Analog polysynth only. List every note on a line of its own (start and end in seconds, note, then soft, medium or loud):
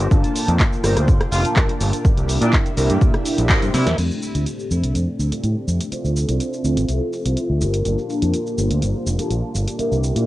0.10 0.81 A#3 medium
0.10 0.81 D4 medium
0.10 0.81 F4 medium
0.10 0.81 A5 loud
0.83 1.41 A#3 medium
0.83 1.42 D4 medium
0.83 1.42 F4 medium
0.83 1.42 C5 loud
1.44 2.01 A#3 medium
1.44 2.02 D4 medium
1.44 2.02 F4 medium
1.44 2.02 A5 medium
2.04 2.74 A#3 medium
2.04 2.74 D4 medium
2.04 2.75 E4 medium
2.04 2.75 G4 medium
2.76 3.95 A#3 loud
2.76 3.95 D4 medium
2.76 3.96 E4 medium
2.76 3.96 G4 loud
3.98 4.68 A3 medium
3.98 4.68 C4 medium
3.98 4.68 D4 medium
3.98 4.69 G4 loud
4.70 5.28 A3 medium
4.70 5.29 C4 medium
4.70 5.29 D4 medium
4.70 5.29 C5 medium
5.31 5.89 A3 medium
5.31 5.89 C4 medium
5.31 5.89 D4 medium
5.31 5.89 G4 medium
5.91 6.61 C4 medium
5.91 6.62 F4 medium
5.91 6.62 A4 medium
5.91 6.61 E5 medium
6.64 7.59 C4 medium
6.64 7.60 F4 medium
6.64 7.60 A4 loud
6.64 7.60 E5 medium
7.85 8.55 A#3 medium
7.85 8.55 D4 medium
7.85 8.55 F4 medium
7.85 8.56 A5 loud
8.57 9.16 A#3 medium
8.57 9.16 D4 medium
8.57 9.16 F4 medium
8.57 9.16 C5 medium
9.18 9.76 A#3 medium
9.18 9.76 D4 medium
9.18 9.76 F4 medium
9.18 9.77 A5 medium
9.78 10.26 A#3 medium
9.78 10.26 D4 medium
9.78 10.26 E4 medium
9.78 10.26 G4 medium